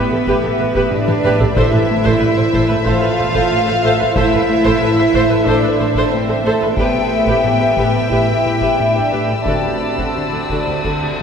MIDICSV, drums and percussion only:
0, 0, Header, 1, 2, 480
1, 0, Start_track
1, 0, Key_signature, 0, "minor"
1, 0, Tempo, 650759
1, 1159, Time_signature, 4, 2, 24, 8
1, 5483, Tempo, 682594
1, 8149, End_track
2, 0, Start_track
2, 0, Title_t, "Taiko and cinematic ensemble drums"
2, 200, Note_on_c, 9, 41, 76
2, 274, Note_off_c, 9, 41, 0
2, 554, Note_on_c, 9, 41, 74
2, 628, Note_off_c, 9, 41, 0
2, 675, Note_on_c, 9, 47, 84
2, 749, Note_off_c, 9, 47, 0
2, 795, Note_on_c, 9, 48, 86
2, 869, Note_off_c, 9, 48, 0
2, 915, Note_on_c, 9, 47, 88
2, 989, Note_off_c, 9, 47, 0
2, 1036, Note_on_c, 9, 43, 91
2, 1110, Note_off_c, 9, 43, 0
2, 1155, Note_on_c, 9, 41, 94
2, 1229, Note_off_c, 9, 41, 0
2, 1516, Note_on_c, 9, 41, 72
2, 1590, Note_off_c, 9, 41, 0
2, 1871, Note_on_c, 9, 41, 72
2, 1944, Note_off_c, 9, 41, 0
2, 2110, Note_on_c, 9, 41, 78
2, 2184, Note_off_c, 9, 41, 0
2, 2470, Note_on_c, 9, 41, 74
2, 2544, Note_off_c, 9, 41, 0
2, 3067, Note_on_c, 9, 41, 96
2, 3141, Note_off_c, 9, 41, 0
2, 3431, Note_on_c, 9, 41, 72
2, 3504, Note_off_c, 9, 41, 0
2, 3789, Note_on_c, 9, 41, 79
2, 3863, Note_off_c, 9, 41, 0
2, 4032, Note_on_c, 9, 41, 74
2, 4105, Note_off_c, 9, 41, 0
2, 4388, Note_on_c, 9, 41, 75
2, 4462, Note_off_c, 9, 41, 0
2, 4993, Note_on_c, 9, 41, 95
2, 5067, Note_off_c, 9, 41, 0
2, 5361, Note_on_c, 9, 41, 65
2, 5434, Note_off_c, 9, 41, 0
2, 5719, Note_on_c, 9, 41, 72
2, 5789, Note_off_c, 9, 41, 0
2, 5954, Note_on_c, 9, 41, 70
2, 6025, Note_off_c, 9, 41, 0
2, 6310, Note_on_c, 9, 41, 68
2, 6381, Note_off_c, 9, 41, 0
2, 6906, Note_on_c, 9, 41, 78
2, 6976, Note_off_c, 9, 41, 0
2, 7276, Note_on_c, 9, 41, 64
2, 7346, Note_off_c, 9, 41, 0
2, 7637, Note_on_c, 9, 41, 64
2, 7707, Note_off_c, 9, 41, 0
2, 7763, Note_on_c, 9, 45, 40
2, 7833, Note_off_c, 9, 45, 0
2, 7883, Note_on_c, 9, 41, 69
2, 7953, Note_off_c, 9, 41, 0
2, 7998, Note_on_c, 9, 45, 39
2, 8068, Note_off_c, 9, 45, 0
2, 8149, End_track
0, 0, End_of_file